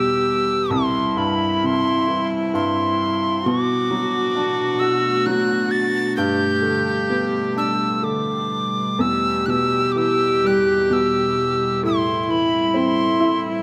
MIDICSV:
0, 0, Header, 1, 5, 480
1, 0, Start_track
1, 0, Tempo, 910470
1, 376, Time_signature, 3, 2, 24, 8
1, 3254, Tempo, 934579
1, 4214, Tempo, 956938
1, 5654, Tempo, 918836
1, 7072, End_track
2, 0, Start_track
2, 0, Title_t, "Tin whistle"
2, 0, Program_c, 0, 75
2, 0, Note_on_c, 0, 88, 96
2, 372, Note_on_c, 0, 84, 89
2, 380, Note_off_c, 0, 88, 0
2, 586, Note_off_c, 0, 84, 0
2, 586, Note_on_c, 0, 84, 54
2, 621, Note_on_c, 0, 83, 80
2, 629, Note_off_c, 0, 84, 0
2, 873, Note_on_c, 0, 84, 101
2, 881, Note_off_c, 0, 83, 0
2, 1208, Note_off_c, 0, 84, 0
2, 1343, Note_on_c, 0, 84, 96
2, 1827, Note_on_c, 0, 86, 110
2, 1835, Note_off_c, 0, 84, 0
2, 2527, Note_on_c, 0, 88, 89
2, 2535, Note_off_c, 0, 86, 0
2, 2773, Note_on_c, 0, 90, 109
2, 2781, Note_off_c, 0, 88, 0
2, 3011, Note_on_c, 0, 93, 108
2, 3019, Note_off_c, 0, 90, 0
2, 3248, Note_off_c, 0, 93, 0
2, 3251, Note_on_c, 0, 91, 109
2, 3808, Note_off_c, 0, 91, 0
2, 3975, Note_on_c, 0, 88, 83
2, 4213, Note_on_c, 0, 86, 87
2, 4220, Note_off_c, 0, 88, 0
2, 4698, Note_on_c, 0, 88, 91
2, 4706, Note_off_c, 0, 86, 0
2, 4925, Note_on_c, 0, 90, 53
2, 4933, Note_off_c, 0, 88, 0
2, 4945, Note_on_c, 0, 88, 88
2, 4952, Note_off_c, 0, 90, 0
2, 5156, Note_on_c, 0, 86, 62
2, 5163, Note_off_c, 0, 88, 0
2, 5185, Note_on_c, 0, 88, 102
2, 5192, Note_off_c, 0, 86, 0
2, 5431, Note_on_c, 0, 90, 83
2, 5438, Note_off_c, 0, 88, 0
2, 5663, Note_on_c, 0, 88, 87
2, 5671, Note_off_c, 0, 90, 0
2, 6140, Note_off_c, 0, 88, 0
2, 6147, Note_on_c, 0, 84, 88
2, 6345, Note_off_c, 0, 84, 0
2, 6345, Note_on_c, 0, 84, 58
2, 6382, Note_on_c, 0, 83, 86
2, 6390, Note_off_c, 0, 84, 0
2, 6623, Note_on_c, 0, 84, 105
2, 6631, Note_off_c, 0, 83, 0
2, 6958, Note_off_c, 0, 84, 0
2, 7072, End_track
3, 0, Start_track
3, 0, Title_t, "Cello"
3, 0, Program_c, 1, 42
3, 0, Note_on_c, 1, 67, 95
3, 380, Note_on_c, 1, 64, 98
3, 388, Note_off_c, 1, 67, 0
3, 1816, Note_off_c, 1, 64, 0
3, 1819, Note_on_c, 1, 66, 109
3, 3249, Note_on_c, 1, 67, 103
3, 3257, Note_off_c, 1, 66, 0
3, 4452, Note_off_c, 1, 67, 0
3, 4691, Note_on_c, 1, 67, 101
3, 6129, Note_on_c, 1, 64, 101
3, 6137, Note_off_c, 1, 67, 0
3, 7072, Note_off_c, 1, 64, 0
3, 7072, End_track
4, 0, Start_track
4, 0, Title_t, "Upright piano"
4, 0, Program_c, 2, 0
4, 0, Control_c, 2, 64, 127
4, 0, Note_on_c, 2, 40, 58
4, 0, Note_on_c, 2, 47, 51
4, 0, Note_on_c, 2, 52, 44
4, 0, Note_on_c, 2, 55, 47
4, 354, Note_off_c, 2, 40, 0
4, 354, Note_off_c, 2, 55, 0
4, 356, Note_off_c, 2, 52, 0
4, 357, Note_off_c, 2, 47, 0
4, 370, Note_on_c, 2, 36, 65
4, 382, Control_c, 2, 64, 0
4, 463, Control_c, 2, 64, 127
4, 614, Note_on_c, 2, 43, 54
4, 864, Note_on_c, 2, 48, 43
4, 1096, Note_on_c, 2, 52, 48
4, 1329, Note_off_c, 2, 43, 0
4, 1337, Note_on_c, 2, 43, 57
4, 1791, Note_off_c, 2, 36, 0
4, 1792, Note_off_c, 2, 52, 0
4, 1797, Note_off_c, 2, 48, 0
4, 1801, Note_off_c, 2, 43, 0
4, 1823, Control_c, 2, 64, 0
4, 1823, Note_on_c, 2, 47, 70
4, 1930, Control_c, 2, 64, 127
4, 2060, Note_on_c, 2, 54, 54
4, 2296, Note_on_c, 2, 62, 51
4, 2534, Note_on_c, 2, 66, 48
4, 2768, Note_off_c, 2, 54, 0
4, 2776, Note_on_c, 2, 54, 57
4, 3232, Note_off_c, 2, 62, 0
4, 3232, Note_off_c, 2, 66, 0
4, 3237, Note_off_c, 2, 47, 0
4, 3241, Note_off_c, 2, 54, 0
4, 3255, Note_on_c, 2, 43, 66
4, 3260, Control_c, 2, 64, 0
4, 3347, Control_c, 2, 64, 127
4, 3483, Note_on_c, 2, 50, 45
4, 3729, Note_on_c, 2, 59, 42
4, 3968, Note_on_c, 2, 62, 45
4, 4199, Note_off_c, 2, 50, 0
4, 4206, Note_on_c, 2, 50, 47
4, 4676, Note_off_c, 2, 62, 0
4, 4677, Note_off_c, 2, 59, 0
4, 4678, Note_off_c, 2, 43, 0
4, 4679, Note_off_c, 2, 50, 0
4, 4688, Note_on_c, 2, 40, 62
4, 4704, Control_c, 2, 64, 0
4, 4784, Control_c, 2, 64, 127
4, 4934, Note_on_c, 2, 47, 47
4, 5172, Note_on_c, 2, 52, 46
4, 5418, Note_on_c, 2, 55, 46
4, 5642, Note_off_c, 2, 47, 0
4, 5649, Note_on_c, 2, 47, 54
4, 6109, Note_off_c, 2, 40, 0
4, 6110, Note_off_c, 2, 52, 0
4, 6114, Note_off_c, 2, 55, 0
4, 6118, Note_off_c, 2, 47, 0
4, 6134, Note_on_c, 2, 45, 64
4, 6141, Control_c, 2, 64, 0
4, 6222, Control_c, 2, 64, 127
4, 6373, Note_on_c, 2, 52, 50
4, 6609, Note_on_c, 2, 60, 56
4, 6850, Note_on_c, 2, 64, 55
4, 7072, Note_off_c, 2, 45, 0
4, 7072, Note_off_c, 2, 52, 0
4, 7072, Note_off_c, 2, 60, 0
4, 7072, Note_off_c, 2, 64, 0
4, 7072, End_track
5, 0, Start_track
5, 0, Title_t, "Ambient pad"
5, 0, Program_c, 3, 92
5, 0, Note_on_c, 3, 40, 69
5, 0, Note_on_c, 3, 47, 56
5, 0, Note_on_c, 3, 55, 72
5, 360, Note_off_c, 3, 47, 0
5, 361, Note_off_c, 3, 40, 0
5, 371, Note_on_c, 3, 64, 75
5, 373, Note_on_c, 3, 48, 72
5, 1793, Note_off_c, 3, 55, 0
5, 1798, Note_off_c, 3, 64, 0
5, 1799, Note_off_c, 3, 48, 0
5, 1826, Note_on_c, 3, 47, 73
5, 1830, Note_on_c, 3, 57, 61
5, 1830, Note_on_c, 3, 62, 78
5, 3239, Note_off_c, 3, 47, 0
5, 3245, Note_on_c, 3, 47, 69
5, 3247, Note_off_c, 3, 62, 0
5, 3247, Note_on_c, 3, 55, 68
5, 4684, Note_off_c, 3, 57, 0
5, 4696, Note_on_c, 3, 40, 65
5, 6110, Note_off_c, 3, 47, 0
5, 6120, Note_off_c, 3, 40, 0
5, 6142, Note_on_c, 3, 60, 72
5, 6143, Note_on_c, 3, 45, 68
5, 7072, Note_off_c, 3, 45, 0
5, 7072, Note_off_c, 3, 55, 0
5, 7072, Note_off_c, 3, 60, 0
5, 7072, End_track
0, 0, End_of_file